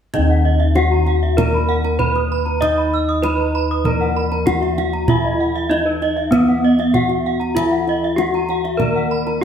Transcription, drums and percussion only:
0.14 kendang low
0.75 kendang high
1.07 kendang slap
1.38 kendang high, kendang low
1.84 kendang slap
1.99 kendang slap, kendang low
2.15 kendang slap
2.46 kendang slap
2.62 kendang low
3.23 kendang high
3.85 kendang low
4.32 kendang slap
4.47 kendang slap, kendang high, kendang low
4.63 kendang slap
4.78 kendang high
4.93 kendang slap
5.08 kendang low
5.71 kendang high
6.02 kendang slap
6.32 kendang high, kendang low
6.79 kendang slap
6.94 kendang slap, kendang low
7.09 kendang slap
7.41 kendang slap
7.57 kendang low
7.87 kendang slap
8.18 kendang slap, kendang high
8.34 kendang slap
8.49 kendang slap
8.65 kendang slap
8.80 kendang low
9.27 kendang slap

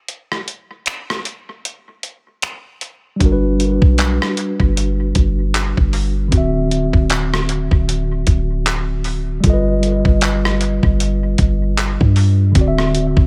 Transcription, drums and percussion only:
0.08 closed hi-hat
0.32 cross-stick
0.48 closed hi-hat
0.86 finger snap, closed hi-hat
1.10 cross-stick
1.25 closed hi-hat
1.65 closed hi-hat
2.03 closed hi-hat
2.42 finger snap, closed hi-hat
2.81 closed hi-hat
3.20 kick, closed hi-hat
3.60 closed hi-hat
3.82 kick
3.98 clap, closed hi-hat
4.22 cross-stick
4.37 closed hi-hat
4.60 kick
4.77 closed hi-hat
5.15 kick, closed hi-hat
5.54 clap, closed hi-hat
5.77 kick
5.93 open hi-hat
6.32 kick, closed hi-hat
6.71 closed hi-hat
6.93 kick
7.10 clap, closed hi-hat
7.34 cross-stick
7.49 closed hi-hat
7.71 kick
7.89 closed hi-hat
8.27 kick, closed hi-hat
8.66 clap, closed hi-hat
9.04 open hi-hat
9.44 kick, closed hi-hat
9.83 closed hi-hat
10.05 kick
10.21 clap, closed hi-hat
10.45 cross-stick
10.61 closed hi-hat
10.83 kick
11.00 closed hi-hat
11.38 kick, closed hi-hat
11.77 clap, closed hi-hat
12.01 kick
12.16 open hi-hat
12.55 kick, closed hi-hat
12.78 cross-stick
12.95 closed hi-hat
13.17 kick

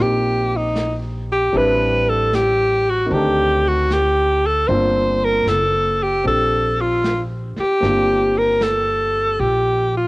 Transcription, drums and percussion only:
0.75 snare, hi-hat pedal
1.55 brush sweep
2.33 snare, hi-hat pedal
3.12 brush sweep
3.90 snare, hi-hat pedal
4.69 brush sweep
5.47 snare, hi-hat pedal
6.26 brush sweep
7.04 snare, hi-hat pedal
7.56 snare
7.83 brush sweep, snare
8.61 snare, hi-hat pedal
9.39 brush sweep

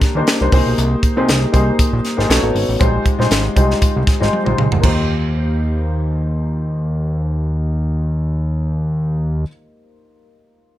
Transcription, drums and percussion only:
0.01 kick, snare, closed hi-hat
0.27 snare, closed hi-hat
0.52 kick, open hi-hat
0.78 closed hi-hat
1.03 kick, closed hi-hat
1.29 snare, closed hi-hat
1.54 kick, closed hi-hat
1.79 kick, closed hi-hat
2.05 snare, closed hi-hat
2.20 snare
2.30 snare, closed hi-hat
2.56 open hi-hat
2.81 kick, closed hi-hat
3.06 kick, closed hi-hat
3.21 snare
3.31 snare, closed hi-hat
3.57 kick, closed hi-hat
3.71 snare
3.82 kick, closed hi-hat
4.07 kick, snare, closed hi-hat
4.22 snare
4.33 high tom
4.46 mid tom
4.58 mid tom
4.72 floor tom
4.84 kick, floor tom, crash

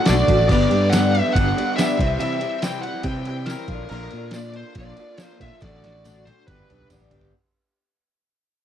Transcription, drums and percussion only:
0.06 snare, ride, tambourine
0.28 kick, ride
0.39 snare
0.49 kick, crash
0.71 ride
0.93 snare, ride, tambourine
1.15 ride
1.27 snare
1.35 kick, ride
1.58 ride
1.78 snare, ride, tambourine
1.99 kick, ride
2.21 ride
2.41 ride
2.62 snare, ride, tambourine
2.83 ride
2.94 snare
3.03 kick, ride
3.25 ride
3.46 snare, ride, tambourine
3.68 kick, ride
3.79 snare
3.89 crash
4.11 ride
4.31 snare, ride, tambourine
4.54 ride
4.75 kick, ride
4.97 ride
5.18 snare, ride, tambourine
5.40 kick, ride
5.53 snare
5.62 kick, snare, ride
5.84 snare, ride
6.05 high tom, ride, tambourine
6.27 high tom, ride
6.48 kick, mid tom, ride
6.60 mid tom
6.70 mid tom, ride
6.81 mid tom
6.90 mid tom, ride, tambourine
7.00 floor tom
7.11 floor tom, ride
7.21 floor tom

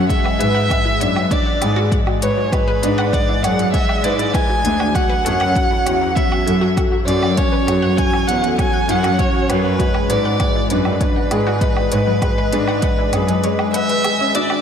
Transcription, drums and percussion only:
0.10 kick, closed hi-hat
0.26 low woodblock
0.41 closed hi-hat
0.70 kick, closed hi-hat, low woodblock
1.01 closed hi-hat
1.16 low woodblock
1.31 kick, closed hi-hat
1.62 closed hi-hat, low woodblock
1.92 kick, closed hi-hat
2.07 low woodblock
2.22 closed hi-hat
2.53 kick, closed hi-hat, low woodblock
2.83 closed hi-hat
2.99 low woodblock
3.13 kick, closed hi-hat
3.44 closed hi-hat, low woodblock
3.59 closed hi-hat
3.74 kick, closed hi-hat
3.89 low woodblock
4.04 closed hi-hat
4.19 closed hi-hat
4.34 kick, closed hi-hat, low woodblock
4.65 closed hi-hat
4.80 low woodblock
4.95 kick, closed hi-hat, low woodblock
5.26 closed hi-hat
5.41 low woodblock
5.56 kick, closed hi-hat
5.87 closed hi-hat, low woodblock
6.16 kick, closed hi-hat
6.32 low woodblock
6.48 closed hi-hat
6.77 kick, closed hi-hat, low woodblock
7.08 closed hi-hat
7.23 low woodblock
7.37 kick, closed hi-hat
7.68 closed hi-hat, low woodblock
7.98 kick, closed hi-hat
8.13 low woodblock
8.29 closed hi-hat
8.44 closed hi-hat
8.59 kick, closed hi-hat, low woodblock
8.89 closed hi-hat
9.04 closed hi-hat, low woodblock
9.19 kick, closed hi-hat
9.50 closed hi-hat, low woodblock
9.80 kick, closed hi-hat
9.95 low woodblock
10.10 closed hi-hat
10.40 kick, closed hi-hat, low woodblock
10.70 closed hi-hat
10.85 low woodblock
11.01 kick, closed hi-hat
11.31 closed hi-hat, low woodblock
11.61 kick, closed hi-hat
11.77 low woodblock
11.92 closed hi-hat
12.22 kick, closed hi-hat, low woodblock
12.53 closed hi-hat
12.68 low woodblock
12.82 kick, closed hi-hat
13.13 closed hi-hat, low woodblock
13.28 closed hi-hat
13.44 closed hi-hat
13.59 low woodblock
13.74 closed hi-hat
13.89 closed hi-hat
14.04 closed hi-hat, low woodblock
14.35 closed hi-hat
14.50 low woodblock

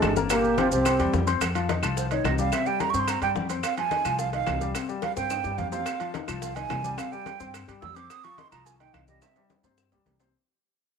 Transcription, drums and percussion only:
0.02 high bongo, low bongo, high conga, high timbale, low timbale, claves, maracas
0.16 high bongo, high conga, maracas
0.30 high bongo, high conga, high timbale, claves, maracas
0.44 high bongo, high conga, maracas
0.58 high bongo, high conga, high timbale, maracas
0.72 high conga, maracas
0.85 high bongo, high conga, high timbale, claves, maracas
0.99 high bongo, high conga, high timbale, maracas
1.13 high bongo, low bongo, high conga, maracas
1.27 high bongo, high timbale, maracas
1.41 high bongo, high conga, high timbale, claves, maracas
1.55 high conga, high timbale, maracas
1.69 high bongo, high conga, high timbale, maracas
1.83 high bongo, high conga, high timbale, claves, maracas
1.97 high bongo, high conga, maracas
2.11 high bongo, high conga, high timbale, maracas
2.25 high bongo, low bongo, high conga, high timbale, low timbale, claves, maracas
2.38 high bongo, high conga, maracas
2.52 high bongo, high conga, high timbale, claves, maracas
2.66 high bongo, high conga, maracas
2.80 high bongo, high conga, high timbale, maracas
2.94 high conga, maracas
3.08 high bongo, high conga, high timbale, claves, maracas
3.22 high bongo, high conga, high timbale, maracas
3.36 high bongo, low bongo, high conga, maracas
3.49 high bongo, high timbale, maracas
3.63 high bongo, high conga, high timbale, claves, maracas
3.77 high conga, high timbale, maracas
3.91 high bongo, high conga, high timbale, maracas
4.05 high bongo, high conga, high timbale, claves, maracas
4.19 high bongo, high conga, maracas
4.33 high bongo, high conga, high timbale, maracas
4.47 high bongo, low bongo, high conga, high timbale, low timbale, claves, maracas
4.61 high bongo, high conga, maracas
4.75 high bongo, high conga, high timbale, claves, maracas
4.89 high bongo, high conga, maracas
5.02 high bongo, high conga, high timbale, maracas
5.17 high bongo, high conga, maracas
5.30 high bongo, high conga, high timbale, claves, maracas
5.44 low bongo, high conga, maracas
5.58 low bongo, high conga, low timbale, maracas
5.72 low bongo, low timbale, maracas
5.86 high bongo, high conga, high timbale, claves, maracas
6.00 high conga, high timbale, maracas
6.14 high bongo, high conga, high timbale, maracas
6.28 high bongo, high conga, high timbale, claves, maracas
6.42 high bongo, high conga, maracas
6.56 high bongo, high conga, high timbale, maracas
6.70 high bongo, low bongo, high conga, high timbale, low timbale, claves, maracas
6.84 high bongo, high conga, maracas
6.98 high bongo, high conga, high timbale, claves, maracas
7.12 high bongo, high conga, maracas
7.26 high bongo, high conga, high timbale, maracas
7.40 high conga, maracas
7.54 high bongo, high conga, high timbale, claves, maracas
7.68 high bongo, high conga, high timbale, maracas
7.82 high bongo, low bongo, high conga, low timbale, maracas
7.96 high bongo, high timbale, maracas
8.10 high bongo, high conga, high timbale, claves, maracas
8.24 high conga, high timbale, maracas
8.38 high bongo, high conga, high timbale, maracas
8.52 high bongo, high conga, high timbale, claves, maracas
8.66 high bongo, high conga, maracas
8.80 high bongo, high conga, high timbale, maracas
8.94 high bongo, low bongo, high conga, high timbale, claves, maracas
9.08 high bongo, high conga, maracas
9.22 high bongo, high conga, high timbale, claves, maracas
9.36 high bongo, high conga, high timbale, maracas
9.50 high bongo, high conga, high timbale, maracas
9.64 high conga, low timbale, maracas
9.78 high bongo, high conga, claves, maracas
9.92 high bongo, high conga, low timbale, maracas
10.06 high bongo, high conga, low timbale, maracas
10.20 low bongo, low timbale, maracas

